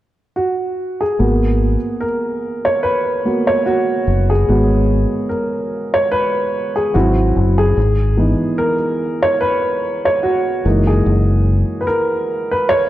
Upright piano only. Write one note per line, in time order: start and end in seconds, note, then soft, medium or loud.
0.36 1.03 F#4 medium
1.01 2.04 G#4 medium
1.19 1.75 A#3 medium
1.19 1.76 B3 soft
1.19 1.76 F#4 medium
2.01 2.61 A#4 medium
2.65 2.84 C#5 medium
2.83 3.49 B4 medium
3.25 3.62 A#3 soft
3.25 3.62 B3 soft
3.25 3.62 F#4 medium
3.47 3.66 C#5 medium
3.66 4.32 F#4 medium
4.30 5.26 G#4 medium
4.48 6.91 G#3 medium
4.48 6.91 B3 medium
4.48 6.91 F#4 medium
5.29 5.90 A#4 medium
5.94 5.99 C#5 loud
6.12 6.72 B4 loud
6.76 6.95 G#4 medium
6.94 7.73 F#3 medium
6.94 7.73 C4 medium
6.94 7.73 E4 medium
6.94 7.60 F#4 medium
7.58 8.55 G#4 medium
8.17 8.74 E3 medium
8.17 8.74 B3 soft
8.17 8.75 D#4 medium
8.58 9.25 A#4 medium
9.22 9.41 C#5 loud
9.41 10.07 B4 medium
10.05 10.24 C#5 medium
10.23 10.89 F#4 medium
10.65 11.84 E3 medium
10.65 11.84 G#3 soft
10.65 11.84 A#3 soft
10.65 11.84 D#4 medium
10.87 11.84 G#4 medium
11.81 11.87 B4 medium
11.87 12.53 A#4 medium
12.51 12.68 B4 medium
12.69 12.89 C#5 loud